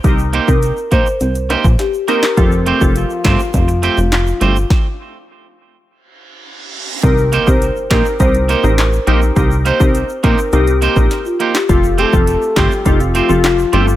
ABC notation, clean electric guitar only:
X:1
M:4/4
L:1/16
Q:1/4=103
K:Cdor
V:1 name="Clean electric guitar"
z2 [B,EGc] z3 [B,EGc] z3 [B,EGc] z3 [B,EGc] z | z2 [A,CGc] z3 [A,CGc] z3 [A,CGc] z3 [A,CGc] z | z16 | z2 [B,EGc] z3 [B,EGc] z3 [B,EGc] z3 [B,EGc] z |
z2 [B,EGc] z3 [B,EGc] z3 [B,EGc] z3 [B,EGc] z | z2 [A,CGc] z3 [A,CGc] z3 [A,CGc] z3 [A,CGc] z |]